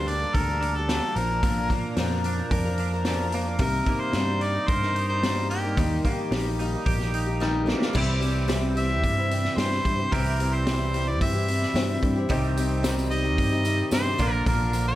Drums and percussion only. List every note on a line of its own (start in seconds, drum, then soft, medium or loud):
0.08 open hi-hat soft
0.35 kick loud
0.35 open hi-hat medium
0.62 open hi-hat soft
0.89 snare medium
0.89 open hi-hat medium
1.16 open hi-hat soft
1.43 kick loud
1.43 open hi-hat medium
1.70 kick medium
1.70 open hi-hat soft
1.97 snare loud
1.97 open hi-hat medium
2.10 snare soft
2.24 open hi-hat soft
2.51 kick loud
2.51 open hi-hat medium
2.78 open hi-hat soft
3.05 snare medium
3.05 open hi-hat medium
3.32 open hi-hat medium
3.59 kick loud
3.59 open hi-hat medium
3.86 kick medium
3.86 open hi-hat soft
4.13 snare loud
4.13 open hi-hat medium
4.41 open hi-hat soft
4.68 kick loud
4.68 open hi-hat medium
4.83 snare soft
4.96 open hi-hat soft
5.23 snare medium
5.23 open hi-hat medium
5.51 open hi-hat soft
5.77 kick loud
5.77 open hi-hat medium
6.05 kick medium
6.05 open hi-hat soft
6.32 snare loud
6.32 open hi-hat medium
6.60 open hi-hat soft
6.86 kick loud
6.86 open hi-hat medium
7.00 snare soft
7.14 open hi-hat soft
7.41 snare soft
7.68 snare medium
7.82 snare medium
7.95 kick loud
7.95 crash loud
8.22 open hi-hat soft
8.49 snare loud
8.49 open hi-hat medium
8.77 open hi-hat soft
9.04 kick medium
9.04 open hi-hat medium
9.31 open hi-hat medium
9.45 snare soft
9.58 snare loud
9.58 open hi-hat medium
9.72 snare soft
9.85 kick medium
9.85 open hi-hat medium
10.12 kick loud
10.12 open hi-hat medium
10.40 open hi-hat medium
10.67 snare loud
10.67 open hi-hat medium
10.94 open hi-hat medium
11.21 kick medium
11.21 open hi-hat medium
11.48 open hi-hat medium
11.62 snare soft
11.76 snare loud
11.76 open hi-hat medium
12.03 kick medium
12.03 open hi-hat medium
12.30 kick loud
12.30 open hi-hat medium
12.44 tambourine soft
12.57 open hi-hat medium
12.57 tambourine medium
12.84 snare loud
12.84 open hi-hat medium
12.84 tambourine loud
12.99 tambourine medium
13.11 open hi-hat soft
13.25 tambourine soft
13.38 kick medium
13.38 open hi-hat medium
13.52 tambourine soft
13.65 open hi-hat soft
13.65 tambourine medium
13.78 tambourine soft
13.91 snare loud
13.91 open hi-hat medium
13.91 tambourine medium
14.05 tambourine soft
14.19 kick medium
14.19 open hi-hat medium
14.19 tambourine medium
14.46 kick loud
14.46 open hi-hat medium
14.46 tambourine soft
14.61 tambourine soft
14.73 open hi-hat medium
14.73 tambourine medium